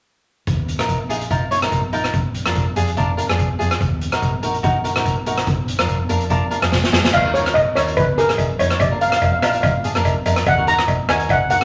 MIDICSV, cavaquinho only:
0, 0, Header, 1, 2, 480
1, 0, Start_track
1, 0, Key_signature, -6, "minor"
1, 0, Tempo, 416378
1, 545, Time_signature, 4, 2, 24, 8
1, 13419, End_track
2, 0, Start_track
2, 0, Title_t, "Cavaquinho"
2, 0, Program_c, 0, 24
2, 908, Note_on_c, 0, 70, 73
2, 915, Note_on_c, 0, 63, 60
2, 918, Note_on_c, 0, 65, 54
2, 1126, Note_off_c, 0, 70, 0
2, 1127, Note_off_c, 0, 63, 0
2, 1127, Note_off_c, 0, 65, 0
2, 1262, Note_on_c, 0, 68, 71
2, 1269, Note_on_c, 0, 65, 68
2, 1271, Note_on_c, 0, 63, 62
2, 1415, Note_off_c, 0, 63, 0
2, 1416, Note_off_c, 0, 65, 0
2, 1416, Note_off_c, 0, 68, 0
2, 1503, Note_on_c, 0, 65, 61
2, 1509, Note_on_c, 0, 63, 62
2, 1511, Note_on_c, 0, 70, 65
2, 1656, Note_off_c, 0, 63, 0
2, 1656, Note_off_c, 0, 65, 0
2, 1656, Note_off_c, 0, 70, 0
2, 1740, Note_on_c, 0, 73, 85
2, 1747, Note_on_c, 0, 65, 50
2, 1750, Note_on_c, 0, 63, 53
2, 1820, Note_off_c, 0, 63, 0
2, 1822, Note_off_c, 0, 65, 0
2, 1822, Note_off_c, 0, 73, 0
2, 1872, Note_on_c, 0, 70, 78
2, 1876, Note_on_c, 0, 65, 51
2, 1880, Note_on_c, 0, 63, 63
2, 2087, Note_off_c, 0, 63, 0
2, 2088, Note_off_c, 0, 65, 0
2, 2088, Note_off_c, 0, 70, 0
2, 2222, Note_on_c, 0, 63, 70
2, 2229, Note_on_c, 0, 70, 77
2, 2231, Note_on_c, 0, 65, 57
2, 2464, Note_off_c, 0, 63, 0
2, 2466, Note_off_c, 0, 65, 0
2, 2467, Note_off_c, 0, 70, 0
2, 2835, Note_on_c, 0, 70, 73
2, 2842, Note_on_c, 0, 65, 57
2, 2847, Note_on_c, 0, 62, 63
2, 3050, Note_off_c, 0, 62, 0
2, 3051, Note_off_c, 0, 65, 0
2, 3051, Note_off_c, 0, 70, 0
2, 3183, Note_on_c, 0, 68, 80
2, 3190, Note_on_c, 0, 65, 66
2, 3193, Note_on_c, 0, 62, 64
2, 3336, Note_off_c, 0, 62, 0
2, 3337, Note_off_c, 0, 65, 0
2, 3337, Note_off_c, 0, 68, 0
2, 3420, Note_on_c, 0, 65, 63
2, 3429, Note_on_c, 0, 62, 61
2, 3434, Note_on_c, 0, 70, 67
2, 3575, Note_off_c, 0, 65, 0
2, 3576, Note_off_c, 0, 70, 0
2, 3577, Note_off_c, 0, 62, 0
2, 3657, Note_on_c, 0, 70, 80
2, 3662, Note_on_c, 0, 65, 59
2, 3670, Note_on_c, 0, 62, 62
2, 3740, Note_off_c, 0, 62, 0
2, 3740, Note_off_c, 0, 65, 0
2, 3740, Note_off_c, 0, 70, 0
2, 3792, Note_on_c, 0, 68, 66
2, 3796, Note_on_c, 0, 62, 68
2, 3798, Note_on_c, 0, 65, 50
2, 4007, Note_off_c, 0, 65, 0
2, 4008, Note_off_c, 0, 62, 0
2, 4009, Note_off_c, 0, 68, 0
2, 4136, Note_on_c, 0, 68, 85
2, 4144, Note_on_c, 0, 65, 58
2, 4145, Note_on_c, 0, 62, 54
2, 4382, Note_off_c, 0, 62, 0
2, 4382, Note_off_c, 0, 68, 0
2, 4384, Note_off_c, 0, 65, 0
2, 4755, Note_on_c, 0, 70, 76
2, 4759, Note_on_c, 0, 66, 54
2, 4762, Note_on_c, 0, 63, 58
2, 4968, Note_off_c, 0, 63, 0
2, 4970, Note_off_c, 0, 66, 0
2, 4970, Note_off_c, 0, 70, 0
2, 5104, Note_on_c, 0, 70, 81
2, 5111, Note_on_c, 0, 63, 63
2, 5119, Note_on_c, 0, 66, 56
2, 5257, Note_off_c, 0, 63, 0
2, 5257, Note_off_c, 0, 66, 0
2, 5257, Note_off_c, 0, 70, 0
2, 5338, Note_on_c, 0, 66, 70
2, 5347, Note_on_c, 0, 63, 68
2, 5351, Note_on_c, 0, 70, 65
2, 5493, Note_off_c, 0, 66, 0
2, 5495, Note_off_c, 0, 63, 0
2, 5495, Note_off_c, 0, 70, 0
2, 5580, Note_on_c, 0, 70, 84
2, 5583, Note_on_c, 0, 66, 55
2, 5586, Note_on_c, 0, 63, 57
2, 5659, Note_off_c, 0, 63, 0
2, 5660, Note_off_c, 0, 66, 0
2, 5661, Note_off_c, 0, 70, 0
2, 5712, Note_on_c, 0, 70, 77
2, 5721, Note_on_c, 0, 66, 59
2, 5726, Note_on_c, 0, 63, 60
2, 5929, Note_off_c, 0, 70, 0
2, 5930, Note_off_c, 0, 63, 0
2, 5930, Note_off_c, 0, 66, 0
2, 6068, Note_on_c, 0, 70, 87
2, 6073, Note_on_c, 0, 66, 71
2, 6077, Note_on_c, 0, 63, 72
2, 6308, Note_off_c, 0, 63, 0
2, 6308, Note_off_c, 0, 66, 0
2, 6308, Note_off_c, 0, 70, 0
2, 6669, Note_on_c, 0, 70, 73
2, 6677, Note_on_c, 0, 65, 61
2, 6683, Note_on_c, 0, 62, 62
2, 6887, Note_off_c, 0, 62, 0
2, 6888, Note_off_c, 0, 65, 0
2, 6888, Note_off_c, 0, 70, 0
2, 7021, Note_on_c, 0, 70, 83
2, 7026, Note_on_c, 0, 62, 64
2, 7034, Note_on_c, 0, 65, 59
2, 7174, Note_off_c, 0, 62, 0
2, 7174, Note_off_c, 0, 65, 0
2, 7175, Note_off_c, 0, 70, 0
2, 7261, Note_on_c, 0, 62, 71
2, 7268, Note_on_c, 0, 65, 65
2, 7272, Note_on_c, 0, 70, 76
2, 7414, Note_off_c, 0, 62, 0
2, 7415, Note_off_c, 0, 65, 0
2, 7415, Note_off_c, 0, 70, 0
2, 7499, Note_on_c, 0, 70, 81
2, 7503, Note_on_c, 0, 62, 59
2, 7510, Note_on_c, 0, 65, 59
2, 7579, Note_off_c, 0, 65, 0
2, 7580, Note_off_c, 0, 62, 0
2, 7580, Note_off_c, 0, 70, 0
2, 7627, Note_on_c, 0, 68, 70
2, 7629, Note_on_c, 0, 62, 67
2, 7633, Note_on_c, 0, 65, 54
2, 7843, Note_off_c, 0, 65, 0
2, 7844, Note_off_c, 0, 62, 0
2, 7845, Note_off_c, 0, 68, 0
2, 7980, Note_on_c, 0, 68, 90
2, 7985, Note_on_c, 0, 62, 79
2, 7987, Note_on_c, 0, 65, 62
2, 8222, Note_off_c, 0, 65, 0
2, 8223, Note_off_c, 0, 62, 0
2, 8223, Note_off_c, 0, 68, 0
2, 8351, Note_on_c, 0, 70, 58
2, 8358, Note_on_c, 0, 63, 55
2, 8363, Note_on_c, 0, 65, 47
2, 8420, Note_off_c, 0, 65, 0
2, 8420, Note_off_c, 0, 70, 0
2, 8421, Note_off_c, 0, 63, 0
2, 8463, Note_on_c, 0, 70, 77
2, 8470, Note_on_c, 0, 65, 53
2, 8475, Note_on_c, 0, 63, 56
2, 8756, Note_off_c, 0, 63, 0
2, 8756, Note_off_c, 0, 70, 0
2, 8757, Note_off_c, 0, 65, 0
2, 8944, Note_on_c, 0, 70, 73
2, 8951, Note_on_c, 0, 65, 56
2, 8954, Note_on_c, 0, 63, 54
2, 9236, Note_off_c, 0, 63, 0
2, 9237, Note_off_c, 0, 65, 0
2, 9237, Note_off_c, 0, 70, 0
2, 9424, Note_on_c, 0, 68, 67
2, 9431, Note_on_c, 0, 63, 60
2, 9437, Note_on_c, 0, 65, 44
2, 9501, Note_off_c, 0, 63, 0
2, 9501, Note_off_c, 0, 65, 0
2, 9502, Note_off_c, 0, 68, 0
2, 9549, Note_on_c, 0, 68, 66
2, 9556, Note_on_c, 0, 63, 53
2, 9559, Note_on_c, 0, 65, 45
2, 9766, Note_off_c, 0, 63, 0
2, 9766, Note_off_c, 0, 65, 0
2, 9766, Note_off_c, 0, 68, 0
2, 9904, Note_on_c, 0, 73, 73
2, 9910, Note_on_c, 0, 65, 61
2, 9916, Note_on_c, 0, 63, 60
2, 10122, Note_off_c, 0, 63, 0
2, 10123, Note_off_c, 0, 65, 0
2, 10123, Note_off_c, 0, 73, 0
2, 10276, Note_on_c, 0, 70, 62
2, 10281, Note_on_c, 0, 65, 53
2, 10286, Note_on_c, 0, 62, 42
2, 10341, Note_off_c, 0, 62, 0
2, 10342, Note_off_c, 0, 65, 0
2, 10342, Note_off_c, 0, 70, 0
2, 10389, Note_on_c, 0, 70, 68
2, 10394, Note_on_c, 0, 65, 55
2, 10401, Note_on_c, 0, 62, 54
2, 10678, Note_off_c, 0, 62, 0
2, 10678, Note_off_c, 0, 65, 0
2, 10678, Note_off_c, 0, 70, 0
2, 10865, Note_on_c, 0, 62, 54
2, 10872, Note_on_c, 0, 70, 69
2, 10874, Note_on_c, 0, 65, 57
2, 11156, Note_off_c, 0, 62, 0
2, 11157, Note_off_c, 0, 65, 0
2, 11158, Note_off_c, 0, 70, 0
2, 11345, Note_on_c, 0, 68, 65
2, 11350, Note_on_c, 0, 65, 52
2, 11358, Note_on_c, 0, 62, 56
2, 11421, Note_off_c, 0, 62, 0
2, 11422, Note_off_c, 0, 65, 0
2, 11422, Note_off_c, 0, 68, 0
2, 11476, Note_on_c, 0, 70, 93
2, 11480, Note_on_c, 0, 62, 66
2, 11480, Note_on_c, 0, 65, 69
2, 11686, Note_off_c, 0, 62, 0
2, 11688, Note_off_c, 0, 65, 0
2, 11689, Note_off_c, 0, 70, 0
2, 11827, Note_on_c, 0, 70, 83
2, 11836, Note_on_c, 0, 65, 63
2, 11839, Note_on_c, 0, 62, 67
2, 12044, Note_off_c, 0, 62, 0
2, 12044, Note_off_c, 0, 70, 0
2, 12045, Note_off_c, 0, 65, 0
2, 12192, Note_on_c, 0, 70, 65
2, 12197, Note_on_c, 0, 66, 55
2, 12202, Note_on_c, 0, 63, 50
2, 12259, Note_off_c, 0, 63, 0
2, 12259, Note_off_c, 0, 66, 0
2, 12260, Note_off_c, 0, 70, 0
2, 12299, Note_on_c, 0, 70, 77
2, 12305, Note_on_c, 0, 66, 64
2, 12309, Note_on_c, 0, 63, 59
2, 12592, Note_off_c, 0, 63, 0
2, 12593, Note_off_c, 0, 66, 0
2, 12594, Note_off_c, 0, 70, 0
2, 12787, Note_on_c, 0, 70, 79
2, 12790, Note_on_c, 0, 63, 67
2, 12794, Note_on_c, 0, 66, 51
2, 13075, Note_off_c, 0, 66, 0
2, 13076, Note_off_c, 0, 63, 0
2, 13077, Note_off_c, 0, 70, 0
2, 13255, Note_on_c, 0, 70, 75
2, 13265, Note_on_c, 0, 63, 63
2, 13271, Note_on_c, 0, 66, 48
2, 13338, Note_off_c, 0, 63, 0
2, 13338, Note_off_c, 0, 66, 0
2, 13338, Note_off_c, 0, 70, 0
2, 13419, End_track
0, 0, End_of_file